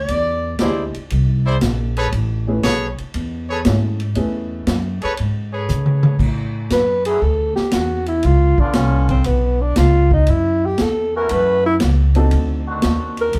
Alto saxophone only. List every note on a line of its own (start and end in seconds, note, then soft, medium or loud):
6.73 7.05 B4 medium
7.06 7.24 G#4 medium
7.22 7.55 A4 medium
7.56 7.75 G4 medium
7.74 8.07 F#4 medium
8.08 8.27 E4 medium
8.25 8.61 F4 medium
8.60 8.77 D4 medium
8.76 9.10 C#4 medium
9.10 9.28 C4 medium
9.26 9.63 B3 medium
9.62 9.79 D4 medium
9.78 10.13 F4 medium
10.13 10.31 D#4 medium
10.30 10.67 E4 medium
10.66 10.83 G4 medium
10.82 11.16 A4 medium
11.17 11.34 A#4 medium
11.33 11.65 B4 medium
11.66 11.75 E4 loud
13.21 13.39 A#4 loud